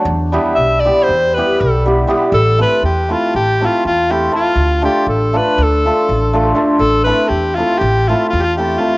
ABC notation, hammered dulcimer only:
X:1
M:9/8
L:1/8
Q:3/8=80
K:Em
V:1 name="Hammered dulcimer"
z [G,B,EG] z [G,B,EG] z [G,B,EG] z [G,B,EG] [G,B,EG] | [K:Am] z [A,CEA] z [A,CEA] z [A,CEA] z [A,CEA] [A,CEA] | z [A,DFA] z [A,DFA] z [A,DFA] z [A,DFA] [A,DFA] | z [A,CEA] z [A,CEA] z [A,CEA] z [A,CEA] [A,CEA] |]